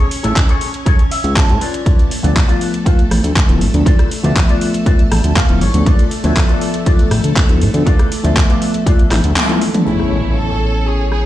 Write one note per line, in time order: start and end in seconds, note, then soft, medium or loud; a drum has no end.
0.00 1.87 C#4 medium
0.00 1.87 C#5 medium
0.11 open hi-hat loud
0.23 0.33 A1 medium
0.23 0.36 G#4 medium
0.23 0.36 A4 medium
0.23 0.37 E5 medium
0.23 closed hi-hat soft
0.36 kick loud
0.36 clap loud
0.36 closed hi-hat soft
0.49 0.68 G#4 medium
0.49 0.68 A4 medium
0.49 0.68 C#5 loud
0.49 closed hi-hat soft
0.61 open hi-hat loud
0.74 closed hi-hat soft
0.86 0.99 G#4 medium
0.86 0.99 A4 medium
0.86 1.00 C#5 medium
0.86 kick loud
0.86 closed hi-hat soft
0.99 closed hi-hat soft
1.10 1.35 E5 medium
1.10 muted clean electric guitar stroke soft
1.10 open hi-hat loud
1.24 1.51 C#2 loud
1.24 closed hi-hat soft
1.36 1.83 A5 medium
1.36 kick loud
1.36 clap loud
1.36 closed hi-hat soft
1.49 1.58 A2 medium
1.49 closed hi-hat soft
1.60 2.11 F4 medium
1.60 2.11 B4 medium
1.60 2.12 D5 medium
1.60 open hi-hat medium
1.74 closed hi-hat soft
1.86 9.87 A3 medium
1.86 9.88 A4 medium
1.86 kick loud
1.86 closed hi-hat soft
1.99 closed hi-hat soft
2.11 open hi-hat loud
2.23 2.33 D2 loud
2.23 3.45 F3 medium
2.23 3.46 A3 medium
2.23 3.46 B3 medium
2.23 2.36 F4 medium
2.23 2.36 B4 medium
2.23 2.37 D5 medium
2.23 closed hi-hat soft
2.36 kick loud
2.36 clap loud
2.36 closed hi-hat soft
2.48 2.67 F4 medium
2.48 2.68 B4 medium
2.48 2.68 D5 medium
2.48 closed hi-hat soft
2.61 open hi-hat medium
2.74 closed hi-hat soft
2.85 2.99 F4 medium
2.85 2.99 B4 medium
2.85 3.00 F5 medium
2.85 kick loud
2.85 closed hi-hat soft
2.99 closed hi-hat soft
3.10 3.21 A1 medium
3.10 muted clean electric guitar stroke soft
3.10 cross-stick medium
3.10 open hi-hat loud
3.24 3.33 D2 medium
3.24 closed hi-hat soft
3.36 kick loud
3.36 clap loud
3.36 closed hi-hat soft
3.48 3.63 D1 medium
3.48 3.61 F3 medium
3.48 3.61 A3 medium
3.48 3.61 B3 medium
3.48 3.61 E4 loud
3.48 closed hi-hat soft
3.61 3.71 A1 medium
3.61 open hi-hat medium
3.74 3.83 D2 loud
3.74 3.86 F3 medium
3.74 3.86 A3 medium
3.74 3.86 B3 medium
3.74 3.86 D4 loud
3.74 closed hi-hat medium
3.85 4.05 F4 loud
3.85 4.05 B4 loud
3.85 4.06 D5 loud
3.85 kick loud
3.85 closed hi-hat soft
3.99 cross-stick medium
3.99 closed hi-hat soft
4.11 open hi-hat loud
4.23 4.33 D2 loud
4.23 5.46 F3 medium
4.23 5.46 A3 medium
4.23 5.46 B3 medium
4.23 4.36 F4 medium
4.23 4.37 B4 medium
4.23 4.37 D5 medium
4.23 5.47 E5 loud
4.23 closed hi-hat medium
4.36 kick loud
4.36 clap loud
4.36 closed hi-hat soft
4.48 4.67 F4 medium
4.48 4.68 B4 medium
4.48 4.68 D5 medium
4.48 closed hi-hat soft
4.61 open hi-hat medium
4.74 closed hi-hat soft
4.85 4.99 F4 medium
4.85 4.99 B4 medium
4.85 4.99 D5 medium
4.85 kick loud
4.85 closed hi-hat medium
4.99 5.09 A1 soft
4.99 closed hi-hat soft
5.11 5.21 A1 medium
5.11 5.35 A5 medium
5.11 muted clean electric guitar stroke soft
5.11 cross-stick medium
5.11 open hi-hat loud
5.24 5.33 D2 medium
5.24 closed hi-hat medium
5.36 5.60 F5 medium
5.36 kick loud
5.36 clap loud
5.36 closed hi-hat soft
5.49 5.63 D1 medium
5.49 5.61 F3 medium
5.49 5.61 A3 medium
5.49 5.61 B3 medium
5.49 5.61 E4 loud
5.49 closed hi-hat soft
5.61 5.71 A1 medium
5.61 5.85 C#5 medium
5.61 open hi-hat medium
5.74 5.83 D2 loud
5.74 5.86 F3 medium
5.74 5.86 A3 medium
5.74 5.86 B3 medium
5.74 5.86 D4 loud
5.74 closed hi-hat soft
5.85 6.05 F4 loud
5.85 6.05 B4 loud
5.85 6.06 D5 loud
5.85 kick loud
5.85 closed hi-hat medium
5.99 closed hi-hat soft
6.11 open hi-hat loud
6.23 6.33 D2 loud
6.23 7.46 F3 medium
6.23 7.46 A3 medium
6.23 7.46 B3 medium
6.23 6.36 F4 medium
6.23 6.37 B4 medium
6.23 6.37 C#5 medium
6.23 7.47 E5 loud
6.23 closed hi-hat medium
6.36 kick loud
6.36 clap loud
6.36 closed hi-hat medium
6.48 6.67 F4 medium
6.48 6.68 B4 medium
6.48 6.68 D5 medium
6.48 closed hi-hat soft
6.61 open hi-hat medium
6.74 closed hi-hat medium
6.86 6.99 F4 medium
6.86 6.99 B4 medium
6.86 7.00 D5 medium
6.86 kick loud
6.86 closed hi-hat medium
6.99 closed hi-hat soft
7.11 7.21 A1 loud
7.11 muted clean electric guitar stroke soft
7.11 cross-stick medium
7.11 open hi-hat medium
7.24 7.33 D2 medium
7.24 closed hi-hat medium
7.36 kick loud
7.36 clap loud
7.36 closed hi-hat medium
7.49 7.63 D1 medium
7.49 7.61 F3 loud
7.49 7.61 A3 medium
7.49 7.61 B3 medium
7.49 7.61 E4 loud
7.49 closed hi-hat soft
7.61 7.71 A1 medium
7.61 open hi-hat medium
7.74 7.83 D2 loud
7.74 7.86 F3 medium
7.74 7.86 A3 medium
7.74 7.86 B3 medium
7.74 7.87 D4 loud
7.74 closed hi-hat medium
7.86 8.05 F4 loud
7.86 8.05 B4 loud
7.86 8.06 D5 loud
7.86 kick loud
7.86 closed hi-hat medium
7.99 cross-stick medium
7.99 closed hi-hat soft
8.12 open hi-hat loud
8.23 8.33 D2 loud
8.23 9.46 F3 medium
8.23 9.46 A3 medium
8.23 9.46 B3 medium
8.23 8.36 F4 medium
8.23 8.37 B4 medium
8.23 8.37 D5 medium
8.23 9.47 E5 loud
8.23 closed hi-hat medium
8.36 kick loud
8.36 clap loud
8.36 closed hi-hat medium
8.49 8.68 F4 medium
8.49 8.68 B4 medium
8.49 8.69 D5 loud
8.49 closed hi-hat soft
8.62 open hi-hat medium
8.74 closed hi-hat medium
8.86 8.99 F4 medium
8.86 8.99 B4 medium
8.86 9.00 D5 medium
8.86 kick loud
8.86 closed hi-hat medium
8.99 9.09 A1 soft
8.99 closed hi-hat soft
9.11 9.21 A1 medium
9.11 muted clean electric guitar stroke soft
9.11 cross-stick medium
9.11 clap medium
9.11 open hi-hat medium
9.11 high tom medium
9.24 9.33 D2 medium
9.24 closed hi-hat medium
9.36 clap loud
9.36 closed hi-hat medium
9.36 mid tom medium
9.49 9.61 F3 loud
9.49 9.61 A3 medium
9.49 9.61 B3 medium
9.49 9.61 E4 loud
9.49 closed hi-hat soft
9.49 mid tom medium
9.61 open hi-hat medium
9.74 9.85 F3 medium
9.74 9.85 A3 medium
9.74 9.85 B3 medium
9.74 9.85 D4 loud
9.74 closed hi-hat medium
9.74 mid tom medium
9.86 11.26 A1 medium
9.86 11.26 B3 medium
9.86 11.26 C#4 medium
9.86 10.33 E4 medium
9.86 11.26 E4 medium
9.86 10.17 G#4 loud
9.86 10.18 A4 medium
9.86 11.26 C#5 medium
9.86 10.18 C#5 loud
9.86 impact medium
10.00 cross-stick soft
10.36 10.86 A4 loud
10.48 10.67 G#4 medium
10.48 10.68 A4 medium
10.48 10.68 C#5 medium
10.86 11.05 G#4 medium
10.86 11.10 G#4 medium
10.86 11.05 A4 medium
10.86 11.06 C#5 medium
11.12 11.26 G#4 medium
11.12 cross-stick medium